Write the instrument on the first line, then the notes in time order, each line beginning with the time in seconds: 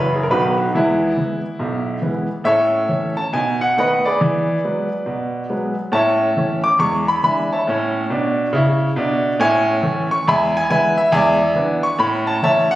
grand piano
Already playing: F#1 F#2 E3 F#3 C#4
0.14 G#4
0.23 A#4
0.30 B1 B2 D#3 F#3 B3 D#4 F#4 B4
0.58 F#4
0.68 D#4
0.75 E2 E3 G#3 B3 E4
1.17 E3 G#3 B3
1.59 B1 B2
2.02 E3 G#3 B3
2.44 A2 C#4 A4 C#5 E5
2.89 E3 A3 C#4
3.17 A5
3.33 B2 D#4 G#5
3.61 F#5
3.77 D#3 A3 B3 B4 D#5 F#5
4.05 G#4 B4 D5
4.21 E3 G#4
4.64 F#3 G#3 B3
5.06 B2
5.50 F#3 G#3 B3
5.92 A2 C#4 C#5 E5 A5
6.37 E3 A3 C#4
6.64 D6
6.79 E2 G#3 C#6
7.08 B5
7.23 E3 G#3 D4 E5 G#5 B5
7.53 C#5 E5 A5
7.67 A2 C#4
8.10 B2 D4
8.53 C#3 E4
8.96 B2 D4
9.40 A2 C#4 C#5 E5 G#5
9.83 E3 A3 C#4
10.11 C#6
10.28 E2 G#3 E5 G#5 B5
10.57 G#5
10.70 E3 G#3 B3 B4 E5 G#5
10.98 E5
11.12 E2 G#3 D5 E5 G#5
11.55 E3 B3 D4
11.83 C#6
11.99 A2 C#4 B5
12.27 A5
12.42 E3 A3 C#4 C#5 E5 A5
12.71 F#5